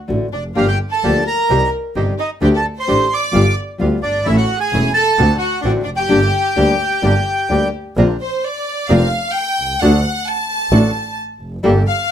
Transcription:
0.08 A1 D3 A3 D4 F#4
0.33 F1 D4 D5
0.55 G1 D3 F3 A#3 D4 F4 G4 F5
0.67 G4 G5
0.90 A4 A5
1.03 D2 D3 F3 A#3 D4 F4 G4
1.25 A#4 A#5
1.49 C2 C3 D#3 G3 C4 D#4 G4
1.95 G1 C3 D#3 G3 C4 D#4 G4
2.19 D#4 D#5
2.41 D2 D3 A3 D4 G4 G5
2.55 A4 A5
2.77 C5 C6
2.87 A1 D3 A3 D4 G4
3.12 D5 D6
3.31 G1 G3 B3 F4
3.78 D2 G3 B3 F4
4.02 G1 D4 D5
4.25 A1 E3 A3 C#4 E4 E5
4.35 F#4 F#5
4.58 G#4 G#5
4.72 E1 E3 A3 C#4 E4
4.93 A4 A5
5.18 D2 D3 A3 C4 D4 F#4
5.38 F#4 F#5
5.61 A1 D3 C4 D4 F#4 D5
5.65 A3 C4 F#4
5.82 D4 D5
5.87 F1
5.95 G4 G5
6.08 G1 D3 G3 A#3 D4 G4
6.56 D2 D3 G3 A#3 D4 G4
7.02 G1 D3 G3 A#3 D4 G4
7.49 D2 D3 G3 A#3 D4 G4
7.97 A#1 D3 A#3 C4 D4 F4 A#4
8.20 C5
8.43 D5
8.89 F1 D3 A#3 C4 D4 F4 A#4 F5
9.35 G5
9.58 C2
9.80 D2 D3 A3 D4 F#4 A4 F#5
10.26 A5
10.71 A1 D3 A3 D4 F#4 A4
11.40 F1
11.63 G1 D3 G3 A#3 D4 G4 A4
11.87 F5

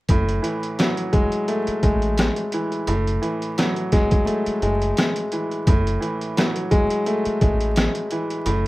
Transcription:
0.09 F#1 A2, kick, closed hi-hat
0.29 closed hi-hat
0.42 E3, closed hi-hat
0.63 closed hi-hat
0.79 F#3, cross-stick, snare, closed hi-hat
0.97 closed hi-hat
1.13 G#3, kick, closed hi-hat
1.32 closed hi-hat
1.48 A3, closed hi-hat
1.67 muted fingered electric bass stroke, closed hi-hat
1.83 A1 G#3, kick, closed hi-hat
2.02 closed hi-hat
2.18 cross-stick, snare, closed hi-hat
2.36 closed hi-hat
2.52 E3, closed hi-hat
2.72 closed hi-hat
2.87 F#1 A2, closed hi-hat
3.07 closed hi-hat
3.22 E3, closed hi-hat
3.42 closed hi-hat
3.58 F#3, cross-stick, snare, closed hi-hat
3.76 closed hi-hat
3.92 G#3, kick, snare, closed hi-hat
4.11 kick, closed hi-hat
4.26 A3, closed hi-hat
4.46 muted fingered electric bass stroke, closed hi-hat
4.62 F#1 G#3, closed hi-hat
4.82 closed hi-hat
4.97 cross-stick, snare, closed hi-hat
5.16 closed hi-hat
5.32 E3, closed hi-hat
5.51 closed hi-hat
5.67 F#1 A2, kick, closed hi-hat
5.87 closed hi-hat
6.01 E3, closed hi-hat
6.21 closed hi-hat
6.37 F#3, cross-stick, snare, closed hi-hat
6.56 closed hi-hat
6.71 G#3, kick, closed hi-hat
6.90 closed hi-hat
7.06 A3, closed hi-hat
7.25 muted fingered electric bass stroke, closed hi-hat
7.41 A1 G#3, kick, closed hi-hat
7.61 closed hi-hat
7.76 cross-stick, snare, closed hi-hat
7.95 closed hi-hat
8.11 E3, closed hi-hat
8.30 closed hi-hat
8.46 F#1 A2, closed hi-hat

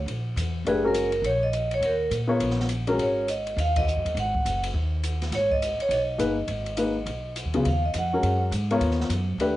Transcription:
0.06 A#1, ride
0.36 E2, hi-hat pedal, ride
0.65 F#1 A3 D4 G4 G#4 B4, ride
0.84 G#3 C#4 F#4 A#4
0.94 hi-hat pedal, ride
1.12 ride
1.22 A#1 C#5, ride
1.43 D#5
1.53 hi-hat pedal, ride
1.71 C#5, ride
1.81 D#2, ride
1.86 A#4
2.11 A#2, hi-hat pedal, ride
2.27 B3 F4 A#4 C#5
2.40 A#1, ride
2.50 snare
2.60 snare
2.69 hi-hat pedal, ride
2.87 G#3 C#4 F#4 A#4, ride
2.98 G#1 C#5, ride
3.28 D#5, hi-hat pedal, ride
3.47 ride
3.56 D#2 F5, ride
3.76 D#5, kick, ride
3.88 hi-hat pedal
3.97 F#2
4.05 D#2, ride
4.15 G#1, ride
4.19 F#5
4.35 kick
4.45 F#1, hi-hat pedal, ride
4.63 ride
4.74 D#2
5.03 hi-hat pedal, ride
5.22 snare, ride
5.31 G#1 C#5, snare, ride
5.51 D#5, kick
5.62 hi-hat pedal, ride
5.78 C#5, muted upright bass stroke, ride
5.89 B1 D#5, ride
6.18 G1 A#3 D#4 G#4 B4, hi-hat pedal, ride
6.48 G#1, ride
6.66 ride
6.77 A#3 D#4 G#4 B4, hi-hat pedal, ride
7.06 B1, ride
7.36 hi-hat pedal, ride
7.45 D#2
7.54 C#2 C#3 F#3 B3 F4 G#4, ride
7.65 D#2 F5, ride
7.85 D#5
7.94 F2, hi-hat pedal, ride
7.98 F#5
8.13 G#3 C#4 F#4 A#4
8.23 F#2, ride
8.51 G#2, hi-hat pedal, ride
8.71 B3 F4 A#4 C#5, ride
8.80 D#2, ride
8.91 snare
9.00 snare
9.09 F#2, hi-hat pedal, ride
9.38 D#2 A3 D4 G4 B4, ride

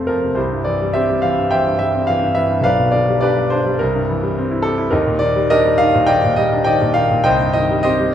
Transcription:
Already playing: F2 C3 F3 A3 C4 F4 A4 C5
0.07 F3 A#4
0.24 C3
0.35 C2 E4 G4 C5
0.52 G2
0.64 E3 D5
0.82 G3
0.93 C4 G4 C5 E5
1.10 G3
1.22 E3 F5
1.38 G2
1.51 E3 C5 E5 G5
1.67 G2
1.79 G3 E5
1.94 C4
2.07 E3 F5
2.22 G2
2.35 E3 E5
2.51 G2
2.61 B1 B4 D5 F5
2.79 B2
2.92 D3 D5
3.08 G3
3.21 D4 G4 B4 D5
3.38 G3
3.50 D4 C5
3.66 G3
3.79 C2 A#4
3.95 G2
4.10 E3
4.23 G3
4.38 C4
4.51 E4
4.62 G4 A4
4.78 E4
4.91 D#2 D#4 G4 A#4
5.07 A#2
5.19 D#3 D5
5.36 G3
5.50 D4 G4 A#4 D#5
5.65 G3
5.78 D#3 F5
5.95 A#2
6.06 D#3 D5 D#5 G5
6.24 A#2
6.36 G3 D#5
6.53 D4
6.64 D#3 D5 D#5 G5
6.81 A#2
6.94 D#3 F5
7.11 A#2
7.24 C2 C5 D#5 G5
7.41 G2
7.53 D#3 D#5
7.71 G3
7.83 C4 G4 C5 D#5
8.00 G3

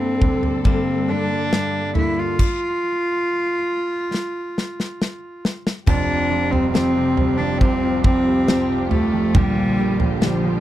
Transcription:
Already playing: G2 D3 G3 A#3 C4 D4 A4
0.21 D3, kick, floor tom
0.43 floor tom
0.64 G2 D3 G3 A#3 C4 D4 A4, kick
1.08 D3 G3 A#3 D4 A4
1.51 G2 G3 A#3 D4 A4, snare
1.95 D3 G3 A#3 D4 E4 A4, floor tom
2.19 F4
2.39 kick, crash
4.14 snare
4.58 snare
4.80 snare
5.02 snare
5.45 snare
5.67 snare
5.86 F1 F2 F3 C4 D4 F4 G4, kick, floor tom, crash
6.09 C3
6.30 F3 C4 F4 G4
6.51 G3 C4, floor tom
6.73 F3 C4 F4 G4, snare
6.95 C3
7.17 G3, floor tom
7.38 F3 D4
7.59 C2 C3 F3 C4 F4, kick
7.64 G4
7.84 C3
8.04 F3 C4 F4 G4, kick
8.27 G3
8.48 F3 C4 F4 G4, snare
8.70 C3
8.90 G3 A3 C4 F4 G4, floor tom
9.14 F3
9.34 A#1 A#2 D3 F3 G3 A#3 D4 G4, kick, floor tom
9.57 F3
9.77 F3 G3 A#3 D4 G4
9.99 A#2 F3, floor tom
10.21 A#2 D3 F3 G3 D4 G4, snare
10.43 F3

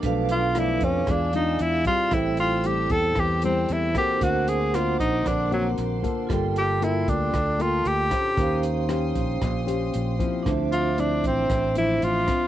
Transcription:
Already playing: F5
0.00 B1 F3 D4 A4 B4 A5 D6, kick, closed hi-hat
0.05 B2 A3 D4 F5
0.29 F4, closed hi-hat
0.55 F3 A3 D4, cross-stick, closed hi-hat
0.59 E4
0.81 F2 C#4, kick, closed hi-hat
1.07 E2 E3 G#3 D4 F4 G#4 D5 F5 G#5 E6, kick, cross-stick, closed hi-hat
1.11 D4
1.33 G#3 D4 D#4 F4, closed hi-hat
1.59 E2 E4, closed hi-hat
1.85 G3 C4 E4 F4, kick, closed hi-hat
2.09 A1 E4 A4 C5 G5 A5, kick, cross-stick, closed hi-hat
2.13 A2 E4 G5
2.37 F4, closed hi-hat
2.64 G3 C4 E4 G4, closed hi-hat
2.90 E2 A4, kick, closed hi-hat
3.15 E2 E3, kick, cross-stick, closed hi-hat
3.20 G4
3.42 G3 C4 E4, closed hi-hat
3.69 E2 E4, closed hi-hat
3.93 A#3 C4 E4 F#4 A4 C5 G5, kick, cross-stick, closed hi-hat
3.98 G4
4.18 D2 D4 A#4 F#5 C6, kick, closed hi-hat
4.22 D3 F#4 C5 F#5 D6
4.48 G#4, closed hi-hat
4.73 A#3 C4 F4 F#4, cross-stick, closed hi-hat
4.99 A#1 D#4, kick, closed hi-hat
5.25 A#1 D3 D4, kick, cross-stick, closed hi-hat
5.50 F#3 A#3 C4 F#4, closed hi-hat
5.78 A#1, closed hi-hat
6.02 A#3 F4 A4, kick, closed hi-hat
6.27 G1 G3 F4 A4 G5, kick, cross-stick, closed hi-hat
6.33 G5
6.56 G4, closed hi-hat
6.81 A#3 E4 F4 A4, closed hi-hat
7.08 D2 D4, kick, closed hi-hat
7.33 D2 D3, kick, cross-stick, closed hi-hat
7.58 A#3 F4 A4, closed hi-hat
7.85 D2 G4, closed hi-hat
8.11 C#4 G4 C5, kick, cross-stick, closed hi-hat
8.35 D#2 D#3 C#4 G4 C6 D#6, kick, closed hi-hat
8.39 C5 F5
8.63 closed hi-hat
8.89 C#4 G4 C5, cross-stick, closed hi-hat
9.15 A#1, kick, closed hi-hat
9.41 A#1 A#2, kick, cross-stick, closed hi-hat
9.66 C#4 G4 C5, closed hi-hat
9.94 A#1, closed hi-hat
10.19 F3 C4 E4, kick, closed hi-hat
10.43 D3 D4 C5 E5 D6, kick, cross-stick, closed hi-hat
10.47 D2 C5 E5
10.72 F4, closed hi-hat
10.98 F3 C4 D4 E4, closed hi-hat
11.24 A1 C4, kick, closed hi-hat
11.50 A1 A2, kick, cross-stick, closed hi-hat
11.76 F3 C4 E4, closed hi-hat
12.02 A1 F4, closed hi-hat
12.27 F3 C4, kick, cross-stick, closed hi-hat

